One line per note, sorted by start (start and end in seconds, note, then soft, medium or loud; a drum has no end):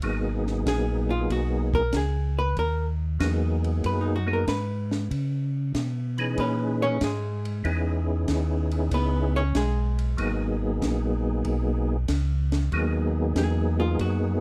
0.02 0.64 G#1 medium
0.02 1.82 F#3 medium
0.02 1.82 A#3 medium
0.02 1.82 B3 medium
0.02 1.82 D#4 medium
0.02 1.83 G#4 medium
0.02 kick soft
0.02 ride medium
0.47 snare soft
0.66 1.28 A#1 medium
0.66 1.10 G#4 medium
0.66 kick soft
0.66 snare medium
0.66 hi-hat pedal medium
0.66 ride medium
1.10 1.30 F4 medium
1.30 1.92 B1 medium
1.30 1.74 F#4 medium
1.30 kick soft
1.30 ride medium
1.74 1.94 A#4 loud
1.74 kick medium
1.93 2.55 C#2 medium
1.93 2.38 G#4 medium
1.93 kick soft
1.93 snare medium
1.93 hi-hat pedal medium
1.93 ride medium
2.39 2.57 B4 loud
2.57 3.19 D#2 medium
2.57 2.85 A#4 medium
2.57 kick soft
2.57 ride medium
3.19 3.82 E2 medium
3.19 4.19 F#3 medium
3.19 4.19 A#3 medium
3.19 4.19 B3 medium
3.19 4.19 D#4 medium
3.19 4.19 G#4 medium
3.19 kick soft
3.19 snare medium
3.19 hi-hat pedal medium
3.19 ride medium
3.64 ride soft
3.84 4.46 F#2 medium
3.84 4.06 B4 medium
3.84 kick soft
3.84 ride medium
4.01 4.25 D#4 soft
4.16 4.31 F#4 medium
4.26 4.45 F#3 medium
4.26 4.45 A#3 medium
4.26 4.45 B3 medium
4.26 4.45 D#4 medium
4.26 4.46 G#4 medium
4.33 4.45 A#4 medium
4.47 5.09 G#2 medium
4.47 5.51 B4 medium
4.47 kick soft
4.47 snare medium
4.47 hi-hat pedal medium
4.47 ride medium
4.91 snare medium
5.11 5.72 C#3 medium
5.11 kick soft
5.11 ride medium
5.74 6.36 B2 medium
5.74 kick soft
5.74 snare medium
5.74 hi-hat pedal medium
5.74 ride medium
6.18 6.97 E3 medium
6.18 6.98 C#4 medium
6.18 6.98 D#4 medium
6.18 6.98 G#4 medium
6.18 6.97 B4 medium
6.18 ride soft
6.38 6.99 A#2 medium
6.38 6.82 C#4 medium
6.38 6.81 B4 medium
6.38 kick soft
6.38 ride medium
6.82 7.02 C#4 medium
6.82 7.01 C#5 loud
7.01 7.63 G#2 medium
7.01 8.06 G#3 soft
7.01 8.06 G#4 medium
7.01 kick soft
7.01 snare medium
7.01 hi-hat pedal medium
7.01 ride medium
7.45 ride medium
7.64 8.26 E2 medium
7.64 9.43 B3 medium
7.64 9.43 C#4 medium
7.64 9.43 D#4 medium
7.64 9.43 E4 medium
7.64 9.44 G#4 medium
7.64 kick soft
7.64 ride soft
8.28 8.90 D#2 medium
8.28 kick soft
8.28 snare medium
8.28 hi-hat pedal medium
8.28 ride medium
8.71 ride soft
8.91 9.53 C#2 medium
8.91 9.35 B3 medium
8.91 9.35 B4 medium
8.91 kick soft
8.91 ride medium
9.36 9.55 C#4 medium
9.36 9.55 C#5 loud
9.55 10.16 B1 loud
9.55 10.59 G#3 soft
9.55 10.59 G#4 medium
9.55 kick soft
9.55 snare medium
9.55 hi-hat pedal medium
9.55 ride medium
9.99 ride medium
10.17 10.80 G#1 medium
10.17 11.96 F#3 medium
10.17 11.96 A#3 medium
10.17 11.97 B3 medium
10.17 11.97 D#4 medium
10.17 11.97 G#4 medium
10.17 kick soft
10.17 ride medium
10.82 11.43 A#1 medium
10.82 kick soft
10.82 snare medium
10.82 hi-hat pedal medium
10.82 ride medium
11.45 12.07 B1 medium
11.45 kick soft
11.45 ride medium
12.08 12.70 C#2 loud
12.08 kick soft
12.08 snare medium
12.08 hi-hat pedal medium
12.08 ride medium
12.52 snare medium
12.52 ride medium
12.72 13.34 D#2 medium
12.72 14.40 F#3 medium
12.72 14.40 A#3 medium
12.72 14.40 B3 medium
12.72 14.40 D#4 medium
12.72 14.40 G#4 medium
12.72 kick soft
12.72 ride soft
13.36 13.97 E2 medium
13.36 13.79 G#4 medium
13.36 kick soft
13.36 snare medium
13.36 hi-hat pedal medium
13.36 ride medium
13.80 13.99 F4 medium
13.99 14.40 F#2 medium
13.99 14.40 F#4 medium
13.99 kick soft
13.99 ride medium